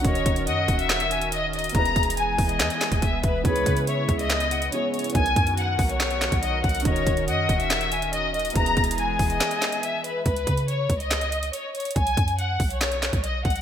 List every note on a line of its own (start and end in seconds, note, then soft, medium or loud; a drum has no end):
0.00 1.71 D#3 medium
0.00 1.70 C#4 medium
0.00 1.71 A#4 medium
0.04 0.25 D#1 loud
0.04 1.73 C#4 medium
0.04 1.73 F#4 medium
0.04 1.72 F#4 medium
0.04 0.45 C#5 loud
0.04 0.44 D#5 loud
0.04 kick loud
0.04 closed hi-hat medium
0.08 1.73 A#4 medium
0.15 closed hi-hat medium
0.26 0.48 D#1 loud
0.26 kick loud
0.26 closed hi-hat medium
0.36 closed hi-hat medium
0.47 0.67 F#2 loud
0.47 0.77 D#5 loud
0.47 1.07 F#5 loud
0.47 closed hi-hat medium
0.68 1.71 D#1 loud
0.68 kick medium
0.68 closed hi-hat medium
0.79 1.29 E5 loud
0.79 closed hi-hat medium
0.89 snare loud
0.89 clap medium
0.89 closed hi-hat medium
1.00 closed hi-hat medium
1.11 1.31 G#5 medium
1.11 closed hi-hat medium
1.22 closed hi-hat medium
1.32 1.52 D#5 loud
1.32 closed hi-hat medium
1.53 1.73 D#5 medium
1.53 closed hi-hat soft
1.59 closed hi-hat medium
1.64 closed hi-hat medium
1.69 3.40 B3 medium
1.69 closed hi-hat medium
1.74 1.95 E1 loud
1.74 3.43 E3 medium
1.74 5.12 G#3 medium
1.74 6.81 B3 medium
1.74 3.41 E4 medium
1.74 3.43 G#4 medium
1.74 3.42 G#4 medium
1.74 2.15 A#5 loud
1.74 kick loud
1.74 closed hi-hat medium
1.78 3.43 B4 medium
1.85 closed hi-hat medium
1.96 2.37 E1 loud
1.96 kick loud
1.96 closed hi-hat medium
2.03 closed hi-hat medium
2.10 closed hi-hat medium
2.17 2.47 G#5 medium
2.17 3.20 G#5 loud
2.17 closed hi-hat medium
2.38 2.61 E1 loud
2.38 kick medium
2.38 open hi-hat medium
2.49 2.99 D#5 medium
2.49 closed hi-hat medium
2.60 2.70 E2 loud
2.60 snare loud
2.60 clap loud
2.60 closed hi-hat medium
2.70 closed hi-hat medium
2.81 snare loud
2.81 clap medium
2.81 closed hi-hat medium
2.92 3.22 E1 loud
2.92 kick loud
2.92 closed hi-hat medium
3.02 3.22 E5 medium
3.02 kick loud
3.02 closed hi-hat medium
3.23 3.44 E1 loud
3.23 3.43 B4 medium
3.23 3.44 E5 medium
3.23 kick loud
3.23 closed hi-hat medium
3.41 3.65 C#2 loud
3.41 5.13 C#3 medium
3.41 4.68 B3 medium
3.41 4.69 C#4 medium
3.41 5.13 E4 medium
3.41 3.85 B4 loud
3.41 kick loud
3.41 closed hi-hat medium
3.45 4.70 E4 medium
3.45 4.72 G#4 medium
3.45 3.85 C#5 loud
3.56 closed hi-hat medium
3.66 4.07 C#3 loud
3.66 kick loud
3.66 closed hi-hat medium
3.77 closed hi-hat medium
3.87 4.17 C#5 medium
3.87 4.48 E5 medium
3.87 closed hi-hat medium
4.09 4.70 C#2 loud
4.09 kick loud
4.09 closed hi-hat medium
4.19 4.69 D#5 loud
4.19 closed hi-hat medium
4.30 snare loud
4.30 clap loud
4.30 closed hi-hat medium
4.40 closed hi-hat medium
4.51 4.71 F#5 medium
4.51 closed hi-hat medium
4.62 closed hi-hat medium
4.71 5.10 B3 medium
4.71 5.15 C#4 soft
4.71 5.16 E4 soft
4.71 5.16 G#4 medium
4.71 4.92 C#5 medium
4.71 closed hi-hat medium
4.94 5.13 C#5 medium
4.94 closed hi-hat soft
4.99 closed hi-hat medium
5.04 closed hi-hat medium
5.10 6.80 B3 medium
5.10 closed hi-hat medium
5.14 5.35 B1 loud
5.14 8.52 D#3 medium
5.14 6.81 D#4 medium
5.14 8.52 F#4 medium
5.14 6.83 F#4 medium
5.14 8.52 A#4 medium
5.14 5.55 G#5 loud
5.14 kick loud
5.14 closed hi-hat medium
5.19 6.84 A#4 medium
5.26 closed hi-hat medium
5.36 5.77 F#2 loud
5.36 kick loud
5.36 closed hi-hat medium
5.47 closed hi-hat medium
5.57 6.81 F#5 medium
5.57 5.88 F#5 medium
5.57 closed hi-hat medium
5.79 6.30 B1 loud
5.79 kick loud
5.79 open hi-hat medium
5.89 6.40 C#5 medium
5.89 closed hi-hat medium
6.00 snare loud
6.00 clap loud
6.00 closed hi-hat medium
6.11 closed hi-hat medium
6.21 snare loud
6.21 clap medium
6.21 closed hi-hat medium
6.32 6.63 B1 loud
6.32 kick loud
6.32 closed hi-hat medium
6.43 6.62 D#5 medium
6.43 closed hi-hat medium
6.64 6.84 B1 loud
6.64 6.83 F#5 medium
6.64 kick loud
6.64 closed hi-hat soft
6.69 closed hi-hat medium
6.75 closed hi-hat medium
6.80 8.51 C#4 medium
6.80 closed hi-hat medium
6.85 7.06 D#1 loud
6.85 8.52 D#3 medium
6.85 8.54 C#4 medium
6.85 8.53 F#4 medium
6.85 7.25 C#5 medium
6.85 7.25 D#5 loud
6.85 kick loud
6.85 closed hi-hat medium
6.89 8.54 A#4 medium
6.96 closed hi-hat medium
7.07 7.29 D#1 loud
7.07 kick loud
7.07 closed hi-hat medium
7.17 closed hi-hat medium
7.28 7.48 F#2 loud
7.28 7.58 D#5 loud
7.28 7.88 F#5 loud
7.28 closed hi-hat medium
7.49 8.52 D#1 loud
7.49 kick medium
7.49 closed hi-hat medium
7.60 8.10 E5 loud
7.60 closed hi-hat medium
7.70 snare loud
7.70 clap loud
7.70 closed hi-hat medium
7.81 closed hi-hat medium
7.92 8.12 G#5 medium
7.92 closed hi-hat medium
8.02 closed hi-hat medium
8.13 8.32 D#5 loud
8.13 closed hi-hat medium
8.34 8.54 D#5 medium
8.34 closed hi-hat soft
8.40 closed hi-hat soft
8.45 closed hi-hat medium
8.50 10.21 B3 medium
8.50 closed hi-hat medium
8.55 8.76 E1 loud
8.55 10.24 E3 medium
8.55 10.24 G#3 medium
8.55 10.24 B3 medium
8.55 10.22 E4 medium
8.55 10.24 G#4 medium
8.55 10.23 G#4 medium
8.55 8.96 A#5 loud
8.55 kick loud
8.55 closed hi-hat medium
8.59 10.24 B4 medium
8.66 closed hi-hat medium
8.77 9.18 E1 loud
8.77 kick loud
8.77 closed hi-hat medium
8.84 closed hi-hat medium
8.91 closed hi-hat medium
8.98 10.00 G#5 loud
8.98 9.28 G#5 medium
8.98 closed hi-hat medium
9.19 9.41 E1 loud
9.19 kick medium
9.19 open hi-hat medium
9.30 9.80 D#5 medium
9.30 closed hi-hat medium
9.40 snare loud
9.40 clap loud
9.40 closed hi-hat medium
9.51 closed hi-hat medium
9.62 snare loud
9.62 clap medium
9.62 closed hi-hat medium
9.72 closed hi-hat medium
9.83 10.03 E5 medium
9.83 closed hi-hat medium
10.04 10.24 B4 medium
10.04 10.25 E5 medium
10.04 closed hi-hat medium
10.26 10.46 C#2 loud
10.26 10.66 B4 loud
10.26 kick loud
10.26 closed hi-hat medium
10.36 closed hi-hat medium
10.47 10.88 C#3 loud
10.47 kick loud
10.47 closed hi-hat medium
10.57 closed hi-hat medium
10.68 10.98 C#5 medium
10.68 closed hi-hat medium
10.90 11.51 C#2 loud
10.90 kick medium
10.90 closed hi-hat medium
11.00 11.50 D#5 medium
11.00 closed hi-hat medium
11.11 snare loud
11.11 clap medium
11.11 closed hi-hat medium
11.21 closed hi-hat medium
11.32 closed hi-hat medium
11.43 closed hi-hat medium
11.53 11.73 C#5 medium
11.53 closed hi-hat medium
11.75 11.94 C#5 medium
11.75 closed hi-hat soft
11.80 closed hi-hat soft
11.85 closed hi-hat medium
11.91 closed hi-hat medium
11.96 12.16 B1 loud
11.96 12.36 G#5 loud
11.96 kick loud
11.96 closed hi-hat medium
12.07 closed hi-hat medium
12.17 12.58 F#2 loud
12.17 kick loud
12.17 closed hi-hat medium
12.28 closed hi-hat medium
12.39 12.69 F#5 medium
12.39 closed hi-hat medium
12.60 13.11 B1 loud
12.60 kick medium
12.60 open hi-hat medium
12.70 13.20 C#5 medium
12.70 closed hi-hat medium
12.81 snare loud
12.81 clap medium
12.81 closed hi-hat medium
12.92 closed hi-hat medium
13.02 snare loud
13.02 clap medium
13.02 closed hi-hat medium
13.13 13.44 B1 loud
13.13 kick loud
13.13 closed hi-hat medium
13.24 13.43 D#5 medium
13.24 closed hi-hat medium
13.45 13.62 B1 loud
13.45 13.62 F#5 medium
13.45 kick loud
13.45 closed hi-hat soft
13.50 closed hi-hat medium
13.56 closed hi-hat medium